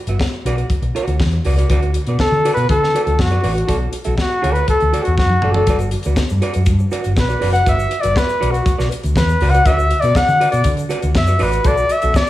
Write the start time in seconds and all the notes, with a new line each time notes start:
0.07 G1 F#4 B4 E5, closed hi-hat
0.20 muted clean electric guitar stroke, kick, snare
0.34 muted clean electric guitar stroke
0.45 B1 F#4 B4 D5, closed hi-hat
0.58 muted clean electric guitar stroke, closed hi-hat
0.70 kick, closed hi-hat
0.82 B1, muted clean electric guitar stroke, closed hi-hat
0.95 F#4 B4 D5, closed hi-hat
1.07 D2, muted clean electric guitar stroke, closed hi-hat
1.20 E2, muted clean electric guitar stroke, kick, snare
1.31 muted clean electric guitar stroke, closed hi-hat
1.45 C#2 F#4 B4 D5, open hi-hat
1.58 F#4 B4 D5, closed hi-hat
1.70 D2 F#4 B4 D5, kick, closed hi-hat
1.83 muted clean electric guitar stroke, closed hi-hat
1.94 muted clean electric guitar stroke, closed hi-hat
2.07 B2 F#4 B4 D5, closed hi-hat
2.19 A4, muted picked electric bass stroke, muted clean electric guitar stroke, kick, snare
2.32 D3, muted clean electric guitar stroke
2.45 F#4 B4 D5, closed hi-hat
2.54 B2 B4, muted clean electric guitar stroke, closed hi-hat
2.69 D3 A4, kick, closed hi-hat
2.83 muted clean electric guitar stroke, snare
2.95 F#4 B4 D5, closed hi-hat
3.04 D2 A4, muted clean electric guitar stroke, closed hi-hat
3.19 F#2 F#4, muted clean electric guitar stroke, kick, snare
3.30 F#4 B4 D5, closed hi-hat
3.43 A1 F#4 B4 D5, open hi-hat
3.54 F#4, muted clean electric guitar stroke, closed hi-hat
3.67 B1 F#4 A4 D5, kick, closed hi-hat
3.80 muted clean electric guitar stroke
3.92 muted clean electric guitar stroke, closed hi-hat
4.04 B1 F#4 A4 E5, closed hi-hat
4.17 muted clean electric guitar stroke, kick, snare
4.21 F#4
4.30 muted clean electric guitar stroke
4.42 D2 F#4 A4 D5, closed hi-hat
4.53 B4, muted clean electric guitar stroke, closed hi-hat
4.68 A4, kick, closed hi-hat
4.80 D2, muted clean electric guitar stroke, closed hi-hat
4.93 F#4 A4 D5, closed hi-hat
5.03 F#4, muted clean electric guitar stroke, closed hi-hat
5.07 E2
5.18 F#2 F#4, muted clean electric guitar stroke, kick, snare
5.30 muted clean electric guitar stroke, high tom
5.42 F#1 F#4 A4 D5, mid tom
5.52 A4 D5, floor tom
5.56 F#4 A4
5.67 G1 F#4 B4 D5, kick, closed hi-hat, shaker
5.79 muted clean electric guitar stroke, closed hi-hat, shaker
5.91 muted clean electric guitar stroke, closed hi-hat
6.03 D2 F#4 B4 D5, closed hi-hat, shaker
6.16 muted picked electric bass stroke, muted clean electric guitar stroke, kick, snare, shaker
6.29 G2, muted clean electric guitar stroke, shaker
6.42 F#4 B4 D5, closed hi-hat
6.54 F#2, muted clean electric guitar stroke, closed hi-hat, shaker
6.66 G2, kick, closed hi-hat, shaker
6.79 muted clean electric guitar stroke, shaker
6.91 F#4 B4 D5, closed hi-hat, shaker
7.03 G1, muted clean electric guitar stroke, closed hi-hat, shaker
7.16 B1 B4, muted clean electric guitar stroke, kick, snare, shaker
7.29 F#4 B4 D5, shaker
7.41 F#1 F#4 B4 D5, open hi-hat
7.53 F#5, muted clean electric guitar stroke, closed hi-hat, shaker
7.66 G1 F#4 B4 D5 E5, kick, closed hi-hat, shaker
7.79 muted clean electric guitar stroke, shaker
7.91 muted clean electric guitar stroke, closed hi-hat
8.01 G1 F#4 B4 D5 E5, closed hi-hat, shaker
8.16 B4, muted clean electric guitar stroke, kick, snare, shaker
8.29 muted clean electric guitar stroke, shaker
8.40 B1 F#4 B4 D5, closed hi-hat
8.51 F#4, muted clean electric guitar stroke, closed hi-hat, shaker
8.66 muted clean electric guitar stroke, kick, closed hi-hat, shaker
8.78 B1 F#4 B4 D5, snare, shaker
8.91 muted clean electric guitar stroke, closed hi-hat, shaker
9.03 D2, muted clean electric guitar stroke, closed hi-hat, shaker
9.16 E2 B4, muted clean electric guitar stroke, kick, snare, shaker
9.29 muted clean electric guitar stroke, shaker
9.41 C#2 F#4 B4 D5, open hi-hat
9.50 D5 F#5
9.54 F#4 B4, closed hi-hat, shaker
9.66 D2 F#4 B4 D5 E5, kick, closed hi-hat, shaker
9.79 muted clean electric guitar stroke, shaker
9.91 muted clean electric guitar stroke, closed hi-hat
10.00 B2 D5, closed hi-hat, shaker
10.05 F#4 B4
10.15 F#5, muted picked electric bass stroke, muted clean electric guitar stroke, kick, snare, shaker
10.28 D3, muted clean electric guitar stroke, shaker
10.40 F#4 B4 D5, closed hi-hat
10.51 B2 D5, muted clean electric guitar stroke, closed hi-hat, shaker
10.64 D3, kick, closed hi-hat, shaker
10.77 muted clean electric guitar stroke, closed hi-hat, shaker
10.89 F#4 B4 D5, closed hi-hat, shaker
11.02 D2, muted clean electric guitar stroke, closed hi-hat, shaker
11.15 F#2 E5, muted clean electric guitar stroke, kick, snare, shaker
11.26 F#4 B4 D5, closed hi-hat, shaker
11.39 A1 F#4 B4 D5, open hi-hat
11.52 muted clean electric guitar stroke, closed hi-hat, shaker
11.64 B1 F#4 A4 D5, kick, closed hi-hat, shaker
11.77 muted clean electric guitar stroke, shaker
11.89 E5, muted clean electric guitar stroke, closed hi-hat, shaker
12.02 B1 F#4 A4 E5, closed hi-hat, shaker
12.14 D5, muted clean electric guitar stroke, kick, snare, shaker